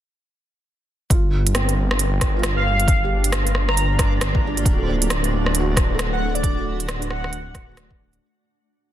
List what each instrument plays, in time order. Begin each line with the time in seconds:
1.10 detuned saw bass G1, synth texture D4 D5, felt piano F4, kick, closed hi-hat
1.47 closed hi-hat
1.55 felt piano C4, cross-stick, closed hi-hat
1.69 closed hi-hat
1.91 cross-stick
1.99 closed hi-hat
2.21 kick, cross-stick, closed hi-hat
2.37 felt piano F4
2.43 cross-stick, closed hi-hat
2.56 digital synth lead F5
2.80 closed hi-hat
2.88 ambient pad A#3, kick, closed hi-hat
2.94 ambient pad F4
3.00 felt piano G4, ambient pad D5 G5
3.24 closed hi-hat
3.32 ambient pad G4, cross-stick, closed hi-hat
3.47 closed hi-hat
3.55 cross-stick
3.68 digital synth lead A#5, cross-stick
3.76 digital synth lead A#5, closed hi-hat
3.99 kick, cross-stick, closed hi-hat
4.21 cross-stick, closed hi-hat
4.35 kick
4.47 felt piano D4
4.57 closed hi-hat
4.65 detuned saw bass D1, ambient pad A3, kick, closed hi-hat
4.73 ambient pad D4, felt piano F#4
4.78 felt piano A4
4.83 felt piano C5
4.87 felt piano D4, ambient pad F#4 F#5
5.02 closed hi-hat
5.10 cross-stick, closed hi-hat
5.24 closed hi-hat
5.46 cross-stick
5.55 closed hi-hat
5.60 felt piano F#4
5.77 kick, cross-stick, closed hi-hat
5.94 felt piano A4
5.99 felt piano C5, cross-stick, closed hi-hat
6.13 digital synth lead F#5
6.25 felt piano A4
6.30 felt piano C5
6.35 digital synth lead D5, closed hi-hat
6.43 kick, closed hi-hat
6.55 felt piano F#4
6.60 felt piano A4
6.80 closed hi-hat
6.89 cross-stick, closed hi-hat
6.99 felt piano D4, closed hi-hat
7.10 digital synth lead F#5, cross-stick
7.24 cross-stick
7.33 closed hi-hat
7.55 kick, cross-stick, closed hi-hat
7.69 felt piano F#4
7.77 cross-stick, closed hi-hat
7.91 kick
8.13 closed hi-hat